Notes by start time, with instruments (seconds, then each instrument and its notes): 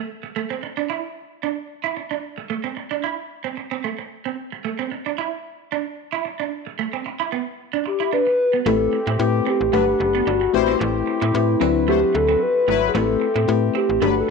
0.23 muted clean electric guitar stroke
0.36 clean electric guitar A3
0.50 clean electric guitar C4
0.63 muted clean electric guitar stroke
0.77 clean electric guitar D4
0.90 clean electric guitar E4
1.43 clean electric guitar D4
1.84 clean electric guitar E4
1.97 muted clean electric guitar stroke
2.11 clean electric guitar D4
2.38 muted clean electric guitar stroke
2.50 clean electric guitar A3
2.64 clean electric guitar C4
2.77 muted clean electric guitar stroke
2.91 clean electric guitar D4
3.04 clean electric guitar E4
3.44 clean electric guitar C4
3.57 muted clean electric guitar stroke
3.71 clean electric guitar C4
3.84 clean electric guitar A3
3.99 muted clean electric guitar stroke
4.25 clean electric guitar C4
4.52 muted clean electric guitar stroke
4.64 clean electric guitar A3
4.79 clean electric guitar C4
4.91 muted clean electric guitar stroke
5.06 clean electric guitar D4
5.18 clean electric guitar E4
5.72 clean electric guitar D4
6.12 clean electric guitar E4
6.25 muted clean electric guitar stroke
6.40 clean electric guitar D4
6.67 muted clean electric guitar stroke
6.79 clean electric guitar A3
6.93 clean electric guitar C4
7.06 muted clean electric guitar stroke
7.20 clean electric guitar E4
7.32 clean electric guitar B3
7.73 clean electric guitar D4
7.86 soft synth lead G4, muted clean electric guitar stroke
8.00 clean electric guitar E4
8.13 clean electric guitar D4, soft synth lead B4
8.27 muted clean electric guitar stroke
8.53 clean electric guitar B3
8.66 fm bass A1, fm electric piano A3 C4 E4 G4 B4, clean electric guitar A3, brass ensemble A3 C4 G4, soft synth lead A4
8.93 muted clean electric guitar stroke
9.07 fm bass A2, clean electric guitar C4
9.19 fm bass A2, fm electric piano A3 C4 E4 G4 B4
9.47 clean electric guitar C4, soft synth lead G4
9.61 fm bass A1
9.73 fm bass G1, analog polysynth F#3 D4 B4, brass ensemble G3 A4 B4 F#5, fm electric piano A3 D4 G4 B4 F#5, clean electric guitar A3
10.00 fm bass F#1, muted clean electric guitar stroke
10.15 clean electric guitar B3
10.27 fm bass G1, clean electric guitar D4, soft synth lead F#4
10.41 muted clean electric guitar stroke
10.53 fm bass A1, analog polysynth G3 E4 C5, brass ensemble A3 C4 G4, fm electric piano A3 C4 E4 G4 B4
10.68 clean electric guitar C4
10.80 fm bass A1, clean electric guitar A3, soft synth lead E4
11.07 muted clean electric guitar stroke
11.21 fm bass A2, clean electric guitar C4
11.34 fm bass A2, fm electric piano A3 C4 E4 G4 B4
11.60 fm bass D2, brass ensemble D3 C4 E4 F#4 B4, fm electric piano F#3 C4 D4 E4 B4, clean electric guitar C4
11.88 analog polysynth A3 F#4 C5, clean electric guitar A3, soft synth lead G4
12.15 fm bass D2, soft synth lead A4, muted clean electric guitar stroke
12.29 clean electric guitar C4
12.43 soft synth lead B4
12.68 fm bass G#1, analog polysynth F#3 E4 B4, clean electric guitar A3
12.89 soft synth lead G#4
12.94 fm bass A1, fm electric piano A3 C4 E4 G4 B4, clean electric guitar A3, brass ensemble A3 G4, soft synth lead A4
13.21 muted clean electric guitar stroke
13.36 fm bass A2, clean electric guitar C4
13.48 fm bass A2, fm electric piano A3 C4 E4 G4 B4
13.75 clean electric guitar C4, soft synth lead G4
13.89 fm bass A1
14.01 fm bass G1, analog polysynth F#3 D4 B4, brass ensemble G3 A4 B4 F#5, fm electric piano A3 D4 F#4 G4 B4, clean electric guitar A3
14.20 soft synth lead A4